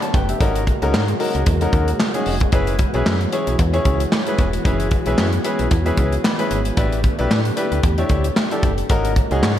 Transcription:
Already playing: D3 A3 B3 G4
0.02 C#5 A5, closed hi-hat
0.14 F#1 B4 G5, kick, closed hi-hat
0.29 G4 E5, closed hi-hat
0.40 G#1 C#3 G#3 A#3 C#4 D#4 F#4 A#4, kick, closed hi-hat
0.56 closed hi-hat
0.67 kick, closed hi-hat
0.82 C#2 C#4 D#4 F#4 A#4, closed hi-hat
0.94 G#2, snare, clap
1.08 closed hi-hat
1.20 C#4 D#4 F#4 A#4, open hi-hat
1.35 C#2, closed hi-hat
1.46 E2, kick, closed hi-hat
1.61 C#4 D#4 F#4 A#4, closed hi-hat
1.73 D#2, kick, closed hi-hat
1.88 closed hi-hat
2.00 snare, clap
2.14 C#4 D#4 F#4 G#4, closed hi-hat
2.26 F1, open hi-hat
2.40 kick, closed hi-hat
2.52 F#1 E3 G#3 B3 C#4 E4 F#4 G#4 B4, kick, closed hi-hat
2.67 closed hi-hat
2.79 kick, closed hi-hat
2.94 B1 C#4 E4 G#4 B4, closed hi-hat
3.06 F#2, snare, clap
3.21 closed hi-hat
3.32 C#4 E4 G#4 C#5, closed hi-hat
3.47 B1, closed hi-hat
3.59 E2, kick, closed hi-hat
3.73 C#4 E4 G#4 C#5, closed hi-hat
3.85 C#2, kick, closed hi-hat
4.00 closed hi-hat
4.12 snare, clap
4.27 C#4 E4 G#4 B4, closed hi-hat
4.38 E1, kick, closed hi-hat
4.53 closed hi-hat
4.64 F#1 C#4 E4 G#4 B4, kick, closed hi-hat
4.80 closed hi-hat
4.91 kick, closed hi-hat
5.06 B1 C#4 E4 G#4 B4, closed hi-hat
5.18 F#2, snare, clap
5.33 closed hi-hat
5.44 C#4 E4 G#4 B4, closed hi-hat
5.59 B1, closed hi-hat
5.71 E2, kick, closed hi-hat
5.86 C#4 E4 G#4 B4, closed hi-hat
5.97 C#2, kick, closed hi-hat
6.12 closed hi-hat
6.24 B5, snare, clap
6.39 C#4 E4 G#4 B4, closed hi-hat
6.51 G#1, closed hi-hat
6.65 closed hi-hat
6.77 A1 D3 A3 D4 E4 G4 B4, kick, closed hi-hat
6.92 closed hi-hat
7.04 kick, closed hi-hat
7.18 B1 D4 E4 G4 B4, closed hi-hat
7.31 A2, snare, clap
7.45 closed hi-hat
7.57 D4 E4 G4 B4, closed hi-hat
7.72 D2, closed hi-hat
7.83 E2, kick, closed hi-hat
7.98 D4 E4 G4 C#5, closed hi-hat
8.09 D2, kick, closed hi-hat
8.24 closed hi-hat
8.36 snare, clap
8.51 D4 E4 G4 A4, closed hi-hat
8.63 F#1, kick, closed hi-hat
8.78 closed hi-hat
8.90 G#1 C#3 G#3 A#3 C#4 D#4 F#4 A#4, kick, closed hi-hat
9.05 closed hi-hat
9.16 kick, closed hi-hat
9.31 C#2 C#4 D#4 F#4 G#4, closed hi-hat
9.43 G#2, snare, clap

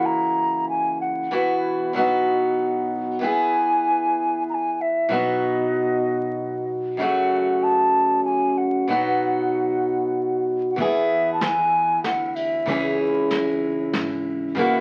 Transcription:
Already playing: C#3 E3 A#3 E4 F#4
0.06 A#5
0.69 G#5
1.01 F#5
1.31 B2 E3 B3 E4 F#4
1.93 B2 F#3 B3
1.97 D#4 F#4
3.19 E3 B3 E4 G#5
3.24 G#4
4.50 A#5
4.54 G#5
4.81 E5
5.09 B2 F#3 B3
5.13 D#4 F#4 D#5
6.97 F#2 C#3 F#3 A3 F#5
7.01 C#4 F#4
7.63 A5
8.25 G#5
8.58 F#5
8.88 B2 F#3 B3 D#4
8.93 F#4
10.70 F#5
10.76 E2 E3 B3 E4 E5, kick, ride
10.81 G#4
11.33 A5
11.41 G#5, snare, ride
12.04 D2 F#5, snare, ride
12.28 F#5
12.35 E5, ride
12.66 C#2 C#3 E3 C#4 E4, kick, ride
12.70 G#4
13.31 snare, ride
13.93 G#1, snare, ride
14.55 C#2 C#3 E3 A#3 F#5, kick, ride
14.59 E4 F#4

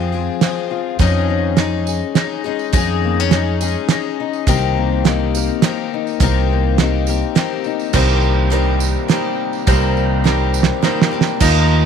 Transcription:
Already playing: F2 F3 G#3 C4 F4 G#4
0.12 F3 G#3 C4 G#4
0.41 F3 G#3 C4 G#4, snare, closed hi-hat
0.71 F4
0.99 F2 D#3 F3 G#3 C#4 D#4 G#4, kick, closed hi-hat, tambourine
1.30 C#4
1.57 F3 G#3 C#4 D#4 G#4, snare, closed hi-hat
1.87 G#4, tambourine
2.15 F3 G#3 C#4 D#4 G#4, snare, closed hi-hat
2.44 G#3 C#4 D#4 G#4
2.59 tambourine
2.73 F2 D#3 G#3 C#4 D#4 G#4, kick, closed hi-hat, tambourine
2.77 G#4
3.04 A#3
3.20 C#4
3.31 F3 G#3 C#4 D#4 G#4, snare, closed hi-hat
3.61 G#3 C#4 D#4 G#4, tambourine
3.89 F3 G#3 C#4 D#4 G#4, snare, closed hi-hat
4.20 D#4
4.33 tambourine
4.47 C2 C3 D#3 A#3 C4 G4 A#4, kick, closed hi-hat, tambourine
4.77 A#3
5.04 D#3 G3 A#3 C4 D#4 G4, snare, closed hi-hat
5.35 A#4, tambourine
5.62 D#3 G3 A#3 C4 G4, snare, closed hi-hat
5.94 D#4
6.07 tambourine
6.20 C2 C3 D#3 A#3 C4 G4 A#4, kick, closed hi-hat, tambourine
6.53 A#3
6.78 D#3 G3 A#3 C4 D#4 G4, snare, closed hi-hat, tambourine
7.07 A#3 C4 G4 A#4, tambourine
7.35 D#3 G3 A#3 C4 G4, snare, closed hi-hat
7.64 D#4, tambourine
7.80 tambourine
7.93 C2 C3 D#3 G3 A#3 C4 D#4 G4 A#4 C5, kick, crash, tambourine
8.08 tambourine
8.23 tambourine
8.50 D#3 G3 A#3 C4 D#4 G4 A#4 C5, closed hi-hat
8.80 tambourine
9.08 D#3 G3 A#3 C4 D#4 G4 A#4 C5, snare, closed hi-hat, tambourine
9.53 tambourine
9.67 C2 C3 D#3 G3 A#3 C4 D#4 G4 A#4 C5, kick, closed hi-hat, tambourine
9.82 tambourine
9.97 tambourine
10.24 D#3 G3 A#3 C4 D#4 G4 A#4 C5, snare
10.54 tambourine
10.63 snare
10.82 D#3 G3 A#3 C4 D#4 G4 A#4 C5, snare, tambourine
11.02 snare
11.11 A#3 C4 G4
11.21 snare
11.27 tambourine
11.40 D#2 D#3 F3 A#3 D#4 F4 A#4 D#5, kick, crash, tambourine

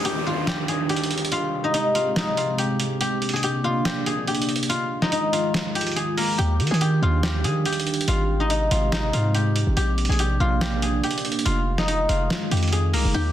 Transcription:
Already playing: D#3 A#3 D4 D#4 F4 G4 G#4 A#4 D#5 F5 G#5, downlifter
0.05 G4 G5, closed hi-hat
0.27 F4 F5
0.47 G4 G5, snare, clap, closed hi-hat
0.68 G#4 G#5, closed hi-hat
0.89 G4 G5, closed hi-hat
0.96 closed hi-hat
1.04 closed hi-hat
1.11 closed hi-hat
1.18 closed hi-hat
1.25 closed hi-hat
1.32 C3 G#3 F4 F5, closed hi-hat
1.64 D#4 D#5
1.74 D#4 D#5, closed hi-hat
1.95 F4 F5, closed hi-hat
2.16 D#4 D#5, snare, clap, closed hi-hat
2.37 F4 F5, closed hi-hat
2.58 G4 G5, closed hi-hat
2.80 closed hi-hat
3.01 A#3 D4 G4 G5, closed hi-hat
3.22 closed hi-hat
3.29 closed hi-hat
3.33 G#4 G#5, closed hi-hat
3.43 G4 G5, closed hi-hat
3.64 F4 F5
3.85 G4 G5, snare, clap, closed hi-hat
4.06 G#4 G#5, closed hi-hat
4.28 G4 G5, closed hi-hat
4.35 closed hi-hat
4.42 closed hi-hat
4.49 closed hi-hat
4.56 closed hi-hat
4.63 closed hi-hat
4.69 D#3 G#3 F4 F5, closed hi-hat
5.02 D#4 D#5, snare
5.12 D#4 D#5, closed hi-hat
5.33 F4 F5, closed hi-hat
5.54 snare, clap, closed hi-hat
5.75 G4 G5, closed hi-hat
5.81 closed hi-hat
5.87 closed hi-hat
5.92 closed hi-hat
5.96 G#4 G#5, closed hi-hat
6.17 A#3 A#4, open hi-hat
6.38 D#2 D#3 D4 G4 G5, closed hi-hat
6.60 D#3, closed hi-hat
6.67 G#4, closed hi-hat
6.71 D#3 G#5, closed hi-hat
6.81 G4 G5, closed hi-hat
7.02 D#2 F4 F5
7.23 G4 G5, snare, clap, closed hi-hat
7.44 D#3 G#4 G#5, closed hi-hat
7.66 G4 G5, closed hi-hat
7.73 closed hi-hat
7.80 closed hi-hat
7.87 closed hi-hat
7.94 closed hi-hat
8.01 closed hi-hat
8.08 G#1 C3 G#3 F4 F5, closed hi-hat
8.40 D#4 D#5
8.50 D#4 D#5, closed hi-hat
8.71 G#1 F4 F5, closed hi-hat
8.92 D#4 D#5, snare, clap, closed hi-hat
9.13 G#2 F4 F5, closed hi-hat
9.35 G4 G5, closed hi-hat
9.56 closed hi-hat
9.67 G#1
9.77 A#1 A#3 D4 G4 G5, closed hi-hat
9.98 closed hi-hat
10.05 closed hi-hat
10.09 A#1 G#4 G#5, closed hi-hat
10.19 G4 G5, closed hi-hat
10.40 A#1 F4 F5
10.61 G4 G5, snare, clap, closed hi-hat
10.82 G#4 G#5, closed hi-hat
11.04 G4 G5, closed hi-hat
11.11 closed hi-hat
11.18 closed hi-hat
11.25 closed hi-hat
11.32 closed hi-hat
11.39 closed hi-hat
11.45 F1 D#3 G#3 F4 F5, closed hi-hat
11.78 D#4 D#5, snare
11.88 D#4 D#5, closed hi-hat
12.09 F1 F4 F5, closed hi-hat
12.30 snare, clap, closed hi-hat
12.51 F2 G4 G5, closed hi-hat
12.57 closed hi-hat
12.63 closed hi-hat
12.68 closed hi-hat
12.72 G#4 G#5, closed hi-hat
12.93 C2 A#3 A#4, open hi-hat
13.05 F1
13.14 D#2 D#3 G4 D5 G5

